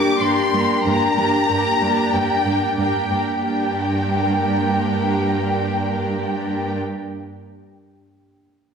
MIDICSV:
0, 0, Header, 1, 6, 480
1, 0, Start_track
1, 0, Key_signature, -2, "minor"
1, 0, Tempo, 645161
1, 626, Time_signature, 4, 2, 24, 8
1, 6505, End_track
2, 0, Start_track
2, 0, Title_t, "Violin section"
2, 0, Program_c, 0, 48
2, 0, Note_on_c, 0, 86, 70
2, 138, Note_off_c, 0, 86, 0
2, 150, Note_on_c, 0, 84, 74
2, 626, Note_on_c, 0, 82, 84
2, 628, Note_off_c, 0, 84, 0
2, 1567, Note_off_c, 0, 82, 0
2, 1586, Note_on_c, 0, 79, 70
2, 2061, Note_off_c, 0, 79, 0
2, 2070, Note_on_c, 0, 79, 53
2, 2532, Note_off_c, 0, 79, 0
2, 2541, Note_on_c, 0, 79, 49
2, 5029, Note_off_c, 0, 79, 0
2, 6505, End_track
3, 0, Start_track
3, 0, Title_t, "Violin section"
3, 0, Program_c, 1, 48
3, 0, Note_on_c, 1, 67, 41
3, 0, Note_on_c, 1, 70, 45
3, 128, Note_off_c, 1, 70, 0
3, 133, Note_off_c, 1, 67, 0
3, 136, Note_on_c, 1, 70, 45
3, 142, Note_on_c, 1, 67, 43
3, 376, Note_off_c, 1, 70, 0
3, 379, Note_off_c, 1, 67, 0
3, 387, Note_on_c, 1, 67, 47
3, 389, Note_on_c, 1, 70, 49
3, 612, Note_off_c, 1, 70, 0
3, 614, Note_off_c, 1, 67, 0
3, 621, Note_on_c, 1, 70, 49
3, 623, Note_on_c, 1, 67, 46
3, 853, Note_off_c, 1, 67, 0
3, 853, Note_off_c, 1, 70, 0
3, 862, Note_on_c, 1, 67, 50
3, 862, Note_on_c, 1, 70, 51
3, 1087, Note_off_c, 1, 67, 0
3, 1088, Note_off_c, 1, 70, 0
3, 1096, Note_on_c, 1, 67, 53
3, 1097, Note_on_c, 1, 70, 51
3, 1336, Note_off_c, 1, 67, 0
3, 1337, Note_off_c, 1, 70, 0
3, 1350, Note_on_c, 1, 67, 47
3, 1350, Note_on_c, 1, 70, 46
3, 1572, Note_off_c, 1, 70, 0
3, 1576, Note_off_c, 1, 67, 0
3, 1581, Note_on_c, 1, 70, 52
3, 1585, Note_on_c, 1, 67, 53
3, 1813, Note_off_c, 1, 70, 0
3, 1817, Note_off_c, 1, 67, 0
3, 1822, Note_on_c, 1, 70, 42
3, 1826, Note_on_c, 1, 67, 44
3, 2059, Note_off_c, 1, 70, 0
3, 2061, Note_off_c, 1, 67, 0
3, 2069, Note_on_c, 1, 70, 42
3, 2070, Note_on_c, 1, 67, 43
3, 2295, Note_off_c, 1, 67, 0
3, 2296, Note_off_c, 1, 70, 0
3, 2303, Note_on_c, 1, 67, 38
3, 2305, Note_on_c, 1, 70, 36
3, 2540, Note_off_c, 1, 67, 0
3, 2541, Note_off_c, 1, 70, 0
3, 2550, Note_on_c, 1, 70, 42
3, 2551, Note_on_c, 1, 67, 43
3, 5033, Note_off_c, 1, 70, 0
3, 5034, Note_off_c, 1, 67, 0
3, 6505, End_track
4, 0, Start_track
4, 0, Title_t, "Ambient pad"
4, 0, Program_c, 2, 92
4, 0, Note_on_c, 2, 58, 71
4, 0, Note_on_c, 2, 62, 77
4, 0, Note_on_c, 2, 67, 76
4, 0, Note_on_c, 2, 79, 76
4, 2514, Note_off_c, 2, 58, 0
4, 2516, Note_off_c, 2, 62, 0
4, 2517, Note_off_c, 2, 67, 0
4, 2517, Note_off_c, 2, 79, 0
4, 2542, Note_on_c, 2, 62, 55
4, 2542, Note_on_c, 2, 79, 56
4, 2545, Note_on_c, 2, 58, 53
4, 2548, Note_on_c, 2, 67, 54
4, 5029, Note_off_c, 2, 79, 0
4, 5030, Note_off_c, 2, 62, 0
4, 5031, Note_off_c, 2, 58, 0
4, 5033, Note_off_c, 2, 67, 0
4, 6505, End_track
5, 0, Start_track
5, 0, Title_t, "Viola section"
5, 0, Program_c, 3, 48
5, 0, Note_on_c, 3, 58, 39
5, 0, Note_on_c, 3, 62, 42
5, 143, Note_off_c, 3, 62, 0
5, 145, Note_off_c, 3, 58, 0
5, 152, Note_on_c, 3, 62, 44
5, 153, Note_on_c, 3, 58, 41
5, 384, Note_off_c, 3, 62, 0
5, 385, Note_off_c, 3, 58, 0
5, 392, Note_on_c, 3, 58, 46
5, 394, Note_on_c, 3, 62, 45
5, 617, Note_off_c, 3, 58, 0
5, 619, Note_off_c, 3, 62, 0
5, 626, Note_on_c, 3, 58, 59
5, 628, Note_on_c, 3, 62, 58
5, 859, Note_off_c, 3, 58, 0
5, 862, Note_off_c, 3, 62, 0
5, 868, Note_on_c, 3, 58, 49
5, 871, Note_on_c, 3, 62, 51
5, 1101, Note_off_c, 3, 62, 0
5, 1102, Note_off_c, 3, 58, 0
5, 1110, Note_on_c, 3, 58, 48
5, 1110, Note_on_c, 3, 62, 45
5, 1334, Note_off_c, 3, 58, 0
5, 1334, Note_off_c, 3, 62, 0
5, 1342, Note_on_c, 3, 58, 54
5, 1343, Note_on_c, 3, 62, 55
5, 1573, Note_off_c, 3, 58, 0
5, 1573, Note_off_c, 3, 62, 0
5, 1582, Note_on_c, 3, 58, 52
5, 1582, Note_on_c, 3, 62, 50
5, 1819, Note_off_c, 3, 58, 0
5, 1819, Note_off_c, 3, 62, 0
5, 1828, Note_on_c, 3, 58, 41
5, 1831, Note_on_c, 3, 62, 42
5, 2058, Note_off_c, 3, 62, 0
5, 2059, Note_off_c, 3, 58, 0
5, 2067, Note_on_c, 3, 62, 41
5, 2068, Note_on_c, 3, 58, 42
5, 2291, Note_off_c, 3, 58, 0
5, 2291, Note_off_c, 3, 62, 0
5, 2299, Note_on_c, 3, 62, 35
5, 2300, Note_on_c, 3, 58, 37
5, 2532, Note_off_c, 3, 62, 0
5, 2534, Note_off_c, 3, 58, 0
5, 2541, Note_on_c, 3, 62, 45
5, 2542, Note_on_c, 3, 58, 44
5, 5029, Note_off_c, 3, 62, 0
5, 5030, Note_off_c, 3, 58, 0
5, 6505, End_track
6, 0, Start_track
6, 0, Title_t, "Cello section"
6, 0, Program_c, 4, 48
6, 154, Note_on_c, 4, 43, 49
6, 213, Note_off_c, 4, 43, 0
6, 397, Note_on_c, 4, 43, 51
6, 457, Note_off_c, 4, 43, 0
6, 635, Note_on_c, 4, 43, 65
6, 694, Note_off_c, 4, 43, 0
6, 876, Note_on_c, 4, 43, 50
6, 936, Note_off_c, 4, 43, 0
6, 1113, Note_on_c, 4, 43, 50
6, 1172, Note_off_c, 4, 43, 0
6, 1352, Note_on_c, 4, 43, 52
6, 1412, Note_off_c, 4, 43, 0
6, 1591, Note_on_c, 4, 43, 54
6, 1651, Note_off_c, 4, 43, 0
6, 1830, Note_on_c, 4, 43, 48
6, 1889, Note_off_c, 4, 43, 0
6, 2068, Note_on_c, 4, 43, 46
6, 2127, Note_off_c, 4, 43, 0
6, 2308, Note_on_c, 4, 43, 42
6, 2367, Note_off_c, 4, 43, 0
6, 2548, Note_on_c, 4, 43, 45
6, 5032, Note_off_c, 4, 43, 0
6, 6505, End_track
0, 0, End_of_file